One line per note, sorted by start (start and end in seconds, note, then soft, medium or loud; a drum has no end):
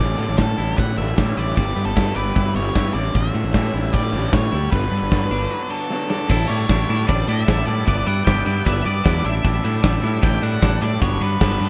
0.00 0.14 A1 medium
0.00 0.57 A2 medium
0.00 0.97 A2 medium
0.00 0.58 E3 medium
0.00 0.58 G3 medium
0.00 0.57 C#4 loud
0.00 0.58 D4 medium
0.00 0.57 E4 medium
0.00 0.40 D5 medium
0.18 0.26 A2 medium
0.18 0.96 D3 medium
0.18 closed hi-hat medium
0.29 0.36 A1 medium
0.37 0.54 A2 medium
0.37 0.77 G3 medium
0.37 0.79 A4 medium
0.37 kick medium
0.37 snare loud
0.37 closed hi-hat medium
0.57 0.73 A1 medium
0.57 1.15 A2 medium
0.57 1.17 E3 medium
0.57 1.18 G3 medium
0.57 1.16 C#4 medium
0.57 1.18 E4 medium
0.57 1.37 E4 medium
0.57 closed hi-hat medium
0.77 0.99 A2 medium
0.77 1.16 G3 medium
0.77 0.96 F#5 medium
0.77 kick loud
0.77 closed hi-hat medium
0.97 1.13 A1 medium
0.97 1.56 D3 medium
0.97 1.38 E5 medium
0.97 closed hi-hat medium
1.17 1.55 A2 medium
1.17 1.33 A2 medium
1.17 1.55 E3 medium
1.17 1.57 G3 medium
1.17 1.56 G3 medium
1.17 1.56 C#4 medium
1.17 1.57 E4 medium
1.17 kick loud
1.17 snare loud
1.17 closed hi-hat medium
1.37 1.52 A1 medium
1.37 1.96 E4 medium
1.37 1.55 D5 medium
1.37 closed hi-hat medium
1.56 1.72 G1 medium
1.56 2.17 G3 medium
1.56 2.97 G3 medium
1.56 2.15 B3 medium
1.56 2.16 E4 loud
1.56 2.15 G4 loud
1.56 1.84 D5 medium
1.56 kick loud
1.56 closed hi-hat medium
1.76 1.84 G2 medium
1.76 2.54 B3 medium
1.76 closed hi-hat medium
1.85 1.93 G1 medium
1.85 2.16 A4 loud
1.96 2.12 G2 loud
1.96 2.34 E4 medium
1.96 kick loud
1.96 snare loud
1.96 closed hi-hat medium
2.15 2.31 G1 medium
2.15 2.74 G3 medium
2.15 2.74 B3 medium
2.15 2.74 E4 medium
2.15 2.76 G4 medium
2.15 2.56 B4 loud
2.15 3.77 D5 medium
2.15 closed hi-hat medium
2.35 2.56 G2 medium
2.35 2.74 E4 medium
2.35 kick loud
2.35 closed hi-hat medium
2.55 2.70 G1 medium
2.55 2.95 B3 medium
2.55 2.94 C#5 medium
2.55 closed hi-hat medium
2.74 2.90 G2 medium
2.74 2.94 G3 medium
2.74 2.94 B3 medium
2.74 2.95 E4 medium
2.74 2.94 E4 medium
2.74 2.96 G4 medium
2.74 kick loud
2.74 snare loud
2.74 closed hi-hat medium
2.94 3.09 A1 medium
2.94 3.52 A2 medium
2.94 3.13 A2 medium
2.94 3.53 E3 medium
2.94 3.54 G3 medium
2.94 3.53 C#4 loud
2.94 3.53 E4 loud
2.94 3.15 D5 medium
2.94 closed hi-hat medium
3.14 3.30 A1 medium
3.14 4.13 A2 medium
3.14 3.53 E5 loud
3.14 kick loud
3.14 closed hi-hat medium
3.34 3.42 A2 loud
3.34 4.11 D3 medium
3.34 closed hi-hat medium
3.44 3.52 A1 medium
3.53 4.12 A2 medium
3.53 3.69 A2 loud
3.53 4.12 E3 medium
3.53 3.93 G3 medium
3.53 4.13 G3 medium
3.53 4.11 C#4 medium
3.53 4.11 E4 medium
3.53 3.95 E5 loud
3.53 kick medium
3.53 snare loud
3.53 closed hi-hat medium
3.74 3.89 A1 medium
3.74 4.51 E4 medium
3.74 closed hi-hat medium
3.93 4.14 A2 medium
3.93 4.32 G3 medium
3.93 4.33 D5 medium
3.93 kick loud
3.93 closed hi-hat medium
4.12 4.28 A1 medium
4.12 4.52 A2 medium
4.12 4.72 D3 medium
4.12 4.52 E3 medium
4.12 4.72 G3 medium
4.12 4.51 C#4 medium
4.12 4.51 E4 medium
4.12 closed hi-hat medium
4.33 4.48 A2 medium
4.33 5.11 G3 medium
4.33 4.71 C#5 loud
4.33 kick loud
4.33 snare loud
4.33 closed hi-hat medium
4.52 4.67 D2 medium
4.52 4.72 E4 medium
4.52 closed hi-hat medium
4.71 4.87 G1 medium
4.71 5.29 G2 medium
4.71 5.71 G2 medium
4.71 5.30 D3 medium
4.71 5.30 G3 medium
4.71 5.30 B3 loud
4.71 5.29 D4 loud
4.71 5.86 B4 medium
4.71 kick loud
4.71 closed hi-hat medium
4.92 4.99 G2 loud
4.92 5.69 D3 medium
4.92 closed hi-hat medium
5.02 5.09 G1 medium
5.11 5.27 G2 medium
5.11 5.49 F#3 medium
5.11 kick loud
5.11 snare medium
5.11 closed hi-hat medium
5.30 5.46 G1 medium
5.30 5.88 G2 medium
5.30 5.89 D3 medium
5.30 5.89 B3 medium
5.30 5.88 D4 medium
5.30 6.08 D4 medium
5.30 closed hi-hat medium
5.50 5.89 F#3 medium
5.71 6.28 D3 medium
5.71 6.09 A4 medium
5.90 6.28 G2 medium
5.90 6.28 D3 medium
5.90 6.29 F#3 medium
5.90 6.29 B3 medium
5.90 6.29 D4 medium
5.90 snare medium
6.10 6.29 D4 medium
6.10 6.47 A4 medium
6.10 snare medium
6.29 6.45 A1 loud
6.29 6.47 A2 loud
6.29 6.47 D3 medium
6.29 6.49 G3 medium
6.29 6.49 D4 loud
6.29 6.50 E4 loud
6.29 7.85 A4 medium
6.29 7.85 G5 medium
6.29 9.22 A5 medium
6.29 kick loud
6.29 crash loud
6.29 shaker medium
6.40 closed hi-hat soft
6.48 6.66 A2 medium
6.48 6.64 A2 medium
6.48 6.67 D3 medium
6.48 6.68 G3 medium
6.48 6.69 D4 medium
6.48 6.70 E4 loud
6.48 7.08 C#5 loud
6.48 closed hi-hat medium
6.48 shaker medium
6.68 6.84 A1 loud
6.68 6.86 A2 loud
6.68 6.87 D3 loud
6.68 6.89 G3 loud
6.68 6.89 D4 loud
6.68 6.89 E4 loud
6.68 kick loud
6.68 snare loud
6.68 closed hi-hat loud
6.68 shaker medium
6.87 7.05 A2 medium
6.87 7.04 A2 loud
6.87 7.06 D3 medium
6.87 7.07 G3 medium
6.87 7.08 D4 loud
6.87 7.08 E4 loud
6.87 closed hi-hat medium
6.87 shaker medium
6.99 closed hi-hat soft
7.06 7.24 A1 loud
7.06 7.26 A2 loud
7.06 7.26 D3 loud
7.06 7.28 G3 loud
7.06 7.28 D4 loud
7.06 7.28 E4 loud
7.06 7.28 D5 medium
7.06 kick loud
7.06 closed hi-hat loud
7.06 shaker medium
7.27 7.45 A2 medium
7.27 7.43 A2 medium
7.27 7.45 D3 medium
7.27 7.47 G3 medium
7.27 7.47 D4 loud
7.27 7.48 E4 loud
7.27 7.66 E5 medium
7.27 closed hi-hat medium
7.27 shaker medium
7.46 7.63 A1 medium
7.46 7.65 A2 loud
7.46 7.65 D3 loud
7.46 7.67 G3 loud
7.46 7.67 D4 loud
7.46 7.68 E4 loud
7.46 kick loud
7.46 snare loud
7.46 closed hi-hat loud
7.46 shaker medium
7.66 7.85 A2 medium
7.66 7.82 A2 medium
7.66 7.85 D3 medium
7.66 7.86 G3 medium
7.66 7.86 D4 medium
7.66 7.87 E4 medium
7.66 7.85 D5 medium
7.66 closed hi-hat medium
7.66 shaker medium
7.78 snare soft
7.86 8.02 G1 loud
7.86 8.05 G3 loud
7.86 8.04 B3 medium
7.86 8.06 E4 loud
7.86 11.69 G4 medium
7.86 8.05 B4 loud
7.86 8.07 D5 loud
7.86 9.24 E5 medium
7.86 kick loud
7.86 closed hi-hat loud
7.86 shaker medium
8.05 8.22 G2 medium
8.05 8.25 G3 medium
8.05 8.25 B3 medium
8.05 8.26 E4 loud
8.05 8.26 B4 medium
8.05 8.27 D5 loud
8.05 8.24 F#5 loud
8.05 closed hi-hat medium
8.24 8.42 G1 loud
8.24 8.44 G3 medium
8.24 8.44 B3 loud
8.24 8.46 E4 loud
8.24 8.45 B4 loud
8.24 8.47 D5 loud
8.24 8.66 G5 loud
8.24 kick loud
8.24 snare loud
8.24 closed hi-hat loud
8.24 shaker loud
8.37 closed hi-hat soft
8.45 8.61 G2 loud
8.45 8.65 G3 medium
8.45 8.64 B3 medium
8.45 8.65 E4 medium
8.45 8.66 B4 medium
8.45 8.67 D5 medium
8.45 closed hi-hat medium
8.45 shaker medium
8.65 8.81 G1 loud
8.65 8.84 G3 loud
8.65 8.84 B3 loud
8.65 8.84 E4 loud
8.65 8.85 B4 loud
8.65 8.86 D5 loud
8.65 8.85 E5 loud
8.65 kick loud
8.65 closed hi-hat loud
8.65 shaker medium
8.77 closed hi-hat soft
8.84 9.00 G2 medium
8.84 9.03 G3 loud
8.84 9.03 B3 loud
8.84 9.03 E4 medium
8.84 9.04 B4 medium
8.84 9.26 D5 medium
8.84 9.05 D5 loud
8.84 closed hi-hat medium
8.84 shaker medium
9.03 9.20 E2 medium
9.03 9.24 G3 loud
9.03 9.23 B3 loud
9.03 9.23 E4 loud
9.03 9.23 B4 loud
9.03 9.29 D5 loud
9.03 kick loud
9.03 snare loud
9.03 closed hi-hat loud
9.03 shaker loud
9.23 9.39 A1 medium
9.23 9.42 A2 medium
9.23 9.43 D3 medium
9.23 9.44 G3 loud
9.23 9.44 D4 loud
9.23 9.44 E4 loud
9.23 11.00 D5 medium
9.23 9.64 E5 loud
9.23 11.00 A5 medium
9.23 closed hi-hat medium
9.23 shaker medium
9.43 9.59 A1 loud
9.43 9.62 A2 medium
9.43 9.62 D3 loud
9.43 9.64 G3 loud
9.43 9.64 D4 loud
9.43 9.63 E4 loud
9.43 kick loud
9.43 closed hi-hat medium
9.43 shaker medium
9.55 closed hi-hat soft
9.63 9.81 A2 medium
9.63 9.79 A2 loud
9.63 9.81 D3 loud
9.63 9.83 G3 loud
9.63 9.83 D4 loud
9.63 9.83 E4 medium
9.63 10.24 E5 loud
9.63 closed hi-hat medium
9.63 shaker medium
9.82 9.99 A1 loud
9.82 10.00 A2 medium
9.82 10.01 D3 loud
9.82 10.02 G3 loud
9.82 10.03 D4 loud
9.82 10.02 E4 loud
9.82 kick loud
9.82 snare loud
9.82 closed hi-hat loud
9.82 shaker loud
10.01 10.20 A2 medium
10.01 10.18 A2 loud
10.01 10.20 D3 medium
10.01 10.21 G3 medium
10.01 10.22 D4 medium
10.01 10.22 E4 medium
10.01 closed hi-hat medium
10.01 shaker medium
10.13 closed hi-hat soft
10.21 10.38 A1 loud
10.21 10.40 A2 loud
10.21 10.40 D3 loud
10.21 10.41 G3 loud
10.21 10.42 D4 loud
10.21 10.42 E4 loud
10.21 10.43 G5 loud
10.21 kick loud
10.21 closed hi-hat loud
10.21 shaker loud
10.41 10.59 A2 loud
10.41 10.57 A2 loud
10.41 10.60 D3 medium
10.41 10.61 G3 loud
10.41 10.61 D4 medium
10.41 10.61 E4 loud
10.41 10.83 F#5 loud
10.41 closed hi-hat medium
10.41 shaker medium
10.60 10.77 A1 medium
10.60 10.79 A2 loud
10.60 10.80 D3 loud
10.60 10.81 G3 loud
10.60 10.81 D4 loud
10.60 10.81 E4 loud
10.60 kick loud
10.60 snare loud
10.60 closed hi-hat loud
10.60 shaker loud
10.80 10.99 A2 medium
10.80 10.97 A2 medium
10.80 10.99 D3 medium
10.80 11.01 G3 loud
10.80 11.01 D4 medium
10.80 11.01 E4 medium
10.80 11.02 D5 loud
10.80 closed hi-hat medium
10.80 shaker medium
11.00 11.17 G1 loud
11.00 11.18 G2 loud
11.00 11.19 D3 medium
11.00 11.20 F#3 medium
11.00 11.20 B3 loud
11.00 11.21 D4 medium
11.00 11.22 C#5 loud
11.00 11.69 F#5 medium
11.00 11.69 B5 medium
11.00 kick loud
11.00 closed hi-hat loud
11.00 shaker loud
11.20 11.38 G2 loud
11.20 11.36 G2 medium
11.20 11.39 D3 medium
11.20 11.39 F#3 loud
11.20 11.39 B3 loud
11.20 11.41 D4 loud
11.20 11.69 B4 loud
11.20 closed hi-hat medium
11.39 11.56 G1 loud
11.39 11.58 G2 loud
11.39 11.59 D3 loud
11.39 11.59 F#3 loud
11.39 11.60 B3 loud
11.39 11.61 D4 loud
11.39 kick loud
11.39 snare loud
11.39 closed hi-hat loud
11.39 shaker medium
11.51 closed hi-hat soft
11.59 11.69 G2 medium
11.59 11.69 G2 loud
11.59 11.69 D3 medium
11.59 11.69 F#3 medium
11.59 11.69 B3 medium
11.59 11.69 D4 loud
11.59 closed hi-hat medium
11.59 shaker medium